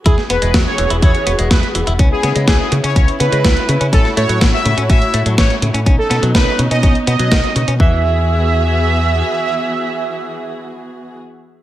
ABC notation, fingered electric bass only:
X:1
M:4/4
L:1/16
Q:1/4=124
K:E
V:1 name="Fingered electric bass" clef=bass
E,, z E,,, E,,, E,, z E,,, E,,, E,, z E,,, E,,, E,, z E,,, E,,, | C,, z C, C, C,, z C, C, C,, z C, C, C,, z C, C, | A,,, z A,, A,, A,,, z A,, A,, A,,, z A,, A,, A,,, z A,, A,, | B,,, z B,, B,, B,,, z B,, B,, B,,, z B,, B,, B,,, z B,, B,, |
E,,12 z4 | z16 |]